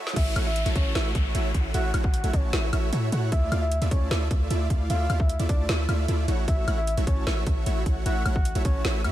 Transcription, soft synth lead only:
0.16 0.33 E5 loud
0.46 0.63 E5 medium
0.76 0.92 C#5 loud
1.74 1.91 F#5 loud
2.04 2.35 F#5 loud
2.33 2.50 C#5 medium
3.32 3.49 E5 loud
3.62 3.78 E5 medium
3.91 4.08 C#5 loud
4.90 5.21 F5 loud
5.20 5.36 E5 loud
5.49 5.66 D5 loud
6.48 6.64 E5 loud
6.78 6.94 E5 loud
7.07 7.24 C#5 loud
8.06 8.22 F#5 loud
8.36 8.52 F#5 medium
8.65 8.82 C#5 loud

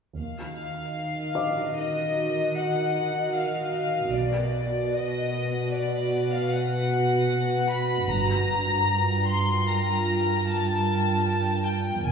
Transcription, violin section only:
0.20 1.73 F5 soft
1.77 2.56 D#5 soft
2.55 3.34 F#5 soft
3.35 4.14 F5 soft
4.13 4.93 D5 soft
4.93 5.72 D#5 soft
5.72 6.30 D5 medium
6.31 6.51 F5 soft
6.50 7.69 F#5 soft
7.69 8.08 B5 medium
8.09 9.27 A#5 medium
9.27 9.66 C6 medium
9.67 10.45 A#5 medium
10.46 11.64 A5 medium
11.65 12.04 G5 soft
12.04 12.12 G#5 soft

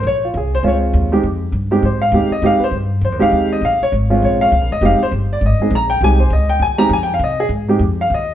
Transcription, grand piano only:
0.07 0.23 C#5 medium
0.25 0.35 F4 medium
0.37 0.53 G#4 medium
0.55 0.61 C5 medium
0.63 1.08 G#3 medium
0.63 1.08 C4 medium
0.63 1.08 C#4 medium
0.63 1.08 F4 medium
0.63 0.65 C5 medium
0.68 0.77 C#5 medium
1.12 1.23 G#3 medium
1.12 1.23 C4 medium
1.12 1.23 D#4 medium
1.12 1.23 G4 medium
1.71 1.82 G#3 medium
1.71 1.82 C4 medium
1.71 1.82 D#4 medium
1.71 1.82 G4 medium
1.85 2.02 C5 medium
2.02 2.29 F5 loud
2.13 2.29 G#3 medium
2.13 2.29 C4 medium
2.13 2.30 D#4 medium
2.13 2.30 G4 medium
2.32 2.43 D#5 medium
2.43 2.59 G#3 medium
2.43 2.59 C4 medium
2.43 2.59 D#4 medium
2.43 2.60 G4 medium
2.43 2.62 F5 medium
2.59 2.60 B4 medium
2.64 2.74 C5 medium
3.05 3.21 C5 medium
3.19 3.59 G#3 medium
3.19 3.59 C4 medium
3.19 3.60 D#4 medium
3.19 3.60 G4 medium
3.19 3.49 F5 loud
3.52 3.63 D#5 medium
3.65 3.81 F5 medium
3.83 3.93 C#5 medium
4.10 4.49 G#3 medium
4.10 4.50 C4 medium
4.10 4.50 C#4 medium
4.10 4.50 F4 medium
4.25 4.41 C#5 medium
4.41 4.68 F5 loud
4.72 4.83 D#5 medium
4.82 4.98 G#3 medium
4.82 4.98 C4 medium
4.82 4.98 D#4 medium
4.82 4.98 G4 medium
4.82 5.01 F5 medium
5.03 5.09 C5 medium
5.33 5.43 D5 medium
5.46 5.72 D#5 medium
5.61 5.71 G#3 medium
5.61 5.71 C4 medium
5.61 5.71 D#4 medium
5.61 5.71 G#4 medium
5.75 5.91 A#5 medium
5.90 6.01 G5 loud
6.02 6.18 G#3 medium
6.02 6.18 C4 medium
6.02 6.18 D#4 medium
6.02 6.18 G4 medium
6.02 6.20 G#5 medium
6.20 6.31 C5 medium
6.33 6.49 D#5 medium
6.49 6.61 G5 medium
6.62 6.79 G#5 medium
6.78 6.89 G#3 medium
6.78 6.89 C4 medium
6.78 6.90 D#4 medium
6.78 6.90 G4 medium
6.78 6.90 A#5 loud
6.93 7.02 G#5 medium
7.03 7.12 G5 medium
7.14 7.22 F5 medium
7.24 7.40 D#5 medium
7.40 7.47 G#4 medium
7.68 7.79 G#3 medium
7.68 7.80 C4 medium
7.68 7.80 D#4 medium
7.68 7.80 G4 medium
8.01 8.12 F5 medium
8.14 8.34 D#5 medium

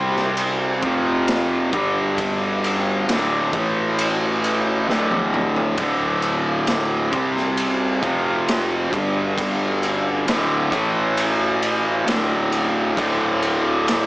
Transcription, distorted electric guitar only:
0.00 0.81 C3 medium
0.00 0.82 G3 medium
0.00 0.82 C4 loud
0.83 1.72 F2 medium
0.83 1.72 C3 loud
0.83 1.72 F3 loud
1.72 3.06 G2 medium
1.72 3.07 D3 medium
1.72 3.07 G3 loud
3.08 3.52 D2 medium
3.08 3.52 A2 medium
3.08 3.52 D3 loud
3.54 4.87 A2 medium
3.54 4.88 E3 medium
3.54 4.88 A3 loud
4.89 5.77 D2 medium
4.89 5.77 A2 loud
4.89 5.78 D3 medium
5.78 7.12 D2 medium
5.78 7.12 A2 medium
5.78 7.12 D3 loud
7.12 8.01 C3 medium
7.12 8.02 G3 loud
7.12 8.02 C4 medium
8.02 8.91 F2 medium
8.02 8.92 C3 medium
8.02 8.92 F3 medium
8.91 10.25 G2 medium
8.91 10.26 D3 medium
8.91 10.26 G3 loud
10.27 10.71 D2 medium
10.27 10.71 A2 medium
10.27 10.72 D3 loud
10.72 12.05 A2 medium
10.72 12.06 E3 loud
10.72 12.06 A3 loud
12.06 12.95 D2 medium
12.06 12.96 A2 loud
12.06 12.96 D3 loud
12.97 14.06 D2 medium
12.97 14.06 A2 loud
12.97 14.06 D3 loud

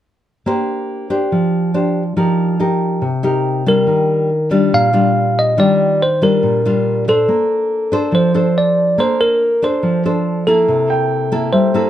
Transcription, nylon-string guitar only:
0.46 1.30 A#3 medium
0.46 1.07 D4 soft
0.46 1.08 G4 soft
0.46 1.08 C5 soft
1.10 1.71 D4 soft
1.10 1.71 G4 soft
1.10 1.71 C5 medium
1.32 2.15 F3 medium
1.74 2.02 D4 soft
1.74 2.02 G4 soft
1.74 2.02 C5 medium
2.17 3.00 F3 medium
2.17 2.56 D#4 soft
2.17 2.57 G4 soft
2.17 2.57 A#4 soft
2.59 3.02 D#4 soft
2.59 3.02 G4 soft
2.59 3.03 A#4 medium
3.02 3.85 C3 medium
3.23 3.63 D#4 medium
3.23 3.63 G4 medium
3.23 3.63 A#4 medium
3.66 4.29 G3 medium
3.66 4.29 D4 medium
3.66 4.29 F4 medium
3.87 4.70 D#3 medium
4.51 4.90 G3 medium
4.51 4.91 D4 medium
4.51 4.91 F4 medium
4.73 5.56 A#2 medium
4.93 5.54 G3 soft
4.93 5.54 D4 medium
4.93 5.55 F4 medium
5.57 6.41 D#3 medium
5.57 6.00 G3 medium
5.57 6.00 D4 medium
5.57 6.00 F4 medium
6.22 6.61 G3 medium
6.22 6.61 D4 medium
6.22 6.61 F4 medium
6.43 7.26 A#2 medium
6.65 7.04 G3 soft
6.65 7.04 D4 medium
6.65 7.05 F4 medium
7.08 7.89 D4 medium
7.08 7.89 A4 medium
7.08 7.89 C5 medium
7.28 8.11 A#3 medium
7.92 8.31 D4 medium
7.92 8.31 A4 medium
7.92 8.31 C5 medium
8.12 8.96 F3 medium
8.34 8.95 D4 medium
8.34 8.95 A4 medium
8.34 8.95 C5 medium
8.98 9.81 A#3 medium
8.98 9.41 D4 medium
8.98 9.41 A4 soft
8.98 9.41 C5 medium
9.62 10.01 D4 medium
9.62 10.02 A4 medium
9.62 10.02 C5 medium
9.83 10.66 F3 medium
10.05 10.44 D4 soft
10.05 10.44 A4 medium
10.05 10.44 C5 medium
10.47 11.29 A#3 medium
10.47 11.29 E4 medium
10.47 11.29 A4 medium
10.68 11.51 C3 medium
11.32 11.71 A#3 medium
11.32 11.71 E4 medium
11.32 11.71 A4 medium
11.53 11.90 G3 medium
11.74 11.90 A#3 medium
11.74 11.90 E4 medium
11.74 11.90 A4 medium

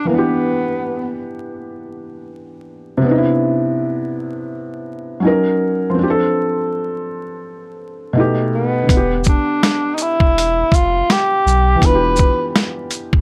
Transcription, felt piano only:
0.00 0.14 G4 medium
0.05 2.97 E3 medium
0.09 2.99 B3 medium
0.14 3.01 D4 medium
0.18 3.03 G4 medium
2.97 5.16 C3 medium
3.02 5.19 B3 medium
3.06 5.21 D4 medium
3.11 3.15 D#4 medium
3.18 5.26 E4 medium
5.20 5.95 F#3 medium
5.20 5.96 C#4 medium
5.25 5.97 D#4 medium
5.25 5.98 A#4 medium
5.90 8.09 F3 medium
5.94 8.11 C4 medium
5.99 8.13 D4 medium
6.03 6.07 G4 medium
6.10 8.19 A4 medium
8.13 8.88 B2 medium
8.13 8.89 A3 medium
8.17 8.90 D#4 medium
8.17 8.91 G4 medium
8.83 11.75 D3 medium
8.88 11.77 B3 medium
8.92 11.79 D4 medium
8.97 11.82 G4 medium
11.75 13.21 E3 medium
11.80 13.21 B3 medium
11.84 13.21 D4 medium
11.89 11.93 F4 medium
11.95 13.21 G4 medium

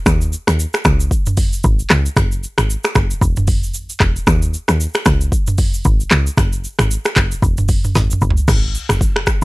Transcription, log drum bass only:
0.06 0.35 D#2 loud
0.48 0.66 D#2 medium
0.85 1.14 C#2 loud
1.64 1.83 G#1 medium
1.90 2.09 C#2 loud
2.17 2.46 F#1 loud
2.58 2.77 G#1 medium
2.96 3.14 F#1 medium
3.21 3.76 E1 loud
3.74 3.93 G#1 loud
4.00 4.19 E1 loud
4.27 4.56 D#2 loud
4.69 4.87 D#2 medium
5.06 5.35 C#2 loud
5.85 6.04 G#1 medium
6.11 6.30 C#2 loud
6.37 6.67 F#1 loud
6.79 6.98 G#1 medium
7.16 7.35 F#1 medium
7.42 7.80 E1 loud
7.95 8.14 G#1 loud
8.22 8.40 F#1 loud
8.48 8.77 G#1 loud
8.89 9.27 F#1 medium

